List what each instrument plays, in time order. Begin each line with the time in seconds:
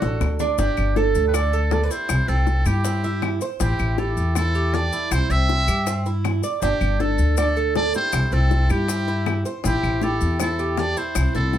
Already playing: nylon-string guitar D4, muted trumpet F#4
0.02 upright bass A1, cuban tres A4, high bongo, maracas
0.21 upright bass D2, low bongo, claves, maracas
0.39 cuban tres D4, low bongo, maracas
0.58 upright bass G1, nylon-string guitar D4, cuban tres D4, muted trumpet G4, high bongo, maracas
0.77 upright bass G1, claves, maracas
0.96 nylon-string guitar D4, muted trumpet A4, cuban tres A4, high bongo, maracas
1.15 upright bass D2, maracas
1.28 nylon-string guitar G4, muted trumpet B4
1.34 nylon-string guitar D4, muted trumpet A4, cuban tres D5, high bongo, claves, maracas
1.53 cuban tres A4, maracas
1.71 nylon-string guitar A4, muted trumpet D5, high bongo, low bongo, maracas
1.83 nylon-string guitar B4, muted trumpet D5
1.91 cuban tres E4, nylon-string guitar G4, muted trumpet C5, maracas
2.09 upright bass C2, high bongo, claves, maracas
2.28 upright bass C2, cuban tres C4, nylon-string guitar E4, muted trumpet A4, high bongo, maracas
2.47 high bongo, maracas
2.66 upright bass G2, nylon-string guitar E4, cuban tres G4, muted trumpet G4, claves, maracas
2.85 cuban tres C4, high bongo, maracas
3.03 cuban tres E4, high bongo, maracas
3.22 high bongo, low bongo, claves, maracas
3.41 cuban tres C5, high bongo, maracas
3.60 upright bass A1, cuban tres C4, nylon-string guitar E4, muted trumpet G4, high bongo, maracas
3.79 upright bass A1, claves, maracas
3.98 nylon-string guitar E4, cuban tres G4, muted trumpet A4, high bongo, maracas
4.17 upright bass E2, maracas
4.35 nylon-string guitar E4, muted trumpet A4, cuban tres C5, high bongo, claves, maracas
4.55 cuban tres G4, maracas
4.74 nylon-string guitar A4, muted trumpet D5, high bongo, low bongo, maracas
4.93 cuban tres E4, maracas
5.11 upright bass C2, nylon-string guitar G4, muted trumpet C5, high bongo, claves, maracas
5.30 upright bass C2, cuban tres C4, nylon-string guitar C5, muted trumpet E5, high bongo, maracas
5.49 high bongo, maracas
5.68 upright bass G2, cuban tres G4, claves, maracas
5.87 cuban tres C4, high bongo, maracas
6.06 cuban tres E4, high bongo, maracas
6.24 high bongo, low bongo, claves, maracas
6.43 cuban tres D5, high bongo, maracas
6.62 upright bass G1, cuban tres D4, nylon-string guitar D4, muted trumpet G4, high bongo, maracas
6.81 upright bass G1, claves, maracas
7.00 nylon-string guitar D4, cuban tres A4, muted trumpet A4, high bongo, maracas
7.18 upright bass D2, maracas
7.37 nylon-string guitar D4, muted trumpet A4, cuban tres D5, high bongo, claves, maracas
7.56 cuban tres A4, maracas
7.75 nylon-string guitar A4, muted trumpet D5, high bongo, low bongo, maracas
7.94 cuban tres E4, nylon-string guitar G4, muted trumpet C5, maracas
8.12 upright bass C2, high bongo, claves, maracas
8.32 upright bass C2, cuban tres C4, nylon-string guitar E4, muted trumpet A4, high bongo, maracas
8.51 high bongo, maracas
8.70 upright bass G2, nylon-string guitar E4, cuban tres G4, muted trumpet G4, claves, maracas
8.88 cuban tres C4, high bongo, maracas
9.08 cuban tres E4, high bongo, maracas
9.26 high bongo, low bongo, claves, maracas
9.45 cuban tres C5, high bongo, maracas
9.64 upright bass A1, cuban tres C4, nylon-string guitar E4, muted trumpet G4, high bongo, maracas
9.83 upright bass A1, claves, maracas
10.02 nylon-string guitar E4, cuban tres G4, muted trumpet A4, high bongo, maracas
10.21 upright bass E2, maracas
10.40 nylon-string guitar E4, muted trumpet A4, cuban tres C5, high bongo, claves, maracas
10.59 cuban tres G4, maracas
10.77 nylon-string guitar A4, muted trumpet D5, high bongo, low bongo, maracas
10.97 cuban tres E4, nylon-string guitar G4, muted trumpet C5, maracas
11.15 upright bass C2, high bongo, claves, maracas
11.34 upright bass C2, cuban tres C4, nylon-string guitar E4, muted trumpet A4, high bongo, maracas
11.53 high bongo, maracas